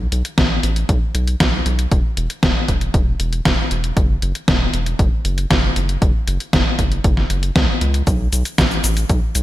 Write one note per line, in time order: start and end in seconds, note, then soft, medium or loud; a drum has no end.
0.12 0.23 B1 loud
0.12 closed hi-hat medium
0.25 closed hi-hat medium
0.38 0.59 A1 loud
0.38 kick loud
0.38 snare loud
0.38 closed hi-hat medium
0.63 0.84 A1 medium
0.63 closed hi-hat medium
0.76 closed hi-hat medium
0.89 1.00 B1 medium
0.89 kick loud
0.89 closed hi-hat medium
1.15 1.36 B1 medium
1.15 closed hi-hat medium
1.28 closed hi-hat medium
1.40 1.61 B1 loud
1.40 kick loud
1.40 snare loud
1.40 closed hi-hat medium
1.66 1.87 B1 loud
1.66 closed hi-hat medium
1.79 closed hi-hat medium
1.92 2.02 E1 medium
1.92 kick loud
1.92 closed hi-hat medium
2.17 2.28 E1 medium
2.17 closed hi-hat medium
2.30 closed hi-hat medium
2.43 2.53 E1 medium
2.43 kick loud
2.43 snare loud
2.43 closed hi-hat medium
2.68 2.90 E1 medium
2.68 kick medium
2.68 closed hi-hat medium
2.81 closed hi-hat medium
2.94 3.15 E1 loud
2.94 kick loud
2.94 closed hi-hat medium
3.20 3.41 E1 medium
3.20 closed hi-hat medium
3.33 closed hi-hat medium
3.45 3.56 E1 medium
3.45 kick loud
3.45 snare loud
3.45 closed hi-hat medium
3.71 3.92 E1 medium
3.71 closed hi-hat medium
3.84 closed hi-hat medium
3.97 4.18 F#1 loud
3.97 kick loud
3.97 closed hi-hat medium
4.22 4.33 F#1 loud
4.22 closed hi-hat medium
4.35 closed hi-hat soft
4.48 4.69 E1 loud
4.48 kick loud
4.48 snare loud
4.48 closed hi-hat medium
4.74 4.95 E1 medium
4.74 closed hi-hat medium
4.86 closed hi-hat soft
4.99 5.10 F#1 medium
4.99 kick loud
4.99 closed hi-hat medium
5.25 5.46 F#1 medium
5.25 closed hi-hat medium
5.38 closed hi-hat soft
5.51 5.72 F#1 loud
5.51 kick loud
5.51 snare loud
5.51 closed hi-hat medium
5.76 5.97 F#1 loud
5.76 closed hi-hat medium
5.89 closed hi-hat soft
6.02 6.12 F#1 medium
6.02 kick loud
6.02 closed hi-hat medium
6.28 6.38 F#1 loud
6.28 closed hi-hat medium
6.40 closed hi-hat soft
6.53 6.64 F#1 medium
6.53 kick loud
6.53 snare loud
6.53 closed hi-hat medium
6.79 7.00 F#1 medium
6.79 kick medium
6.79 closed hi-hat medium
6.92 closed hi-hat soft
7.04 7.26 F#1 loud
7.04 kick loud
7.04 closed hi-hat medium
7.17 snare soft
7.30 7.51 F#1 loud
7.30 closed hi-hat medium
7.43 closed hi-hat soft
7.56 7.66 C#2 loud
7.56 kick loud
7.56 snare loud
7.56 closed hi-hat medium
7.81 8.02 C#2 medium
7.81 closed hi-hat medium
7.94 closed hi-hat soft
8.07 8.28 B1 loud
8.07 kick loud
8.07 closed hi-hat medium
8.07 cabasa soft
8.33 8.43 B1 loud
8.33 closed hi-hat medium
8.33 cabasa medium
8.45 closed hi-hat soft
8.45 cabasa soft
8.58 8.79 A1 loud
8.58 kick loud
8.58 snare loud
8.58 closed hi-hat medium
8.58 cabasa soft
8.71 cabasa soft
8.84 9.05 A1 medium
8.84 closed hi-hat medium
8.84 cabasa medium
8.97 closed hi-hat soft
8.97 cabasa soft
9.10 9.20 B1 medium
9.10 kick loud
9.10 closed hi-hat medium
9.10 cabasa soft
9.35 9.43 B1 medium
9.35 closed hi-hat medium
9.35 cabasa medium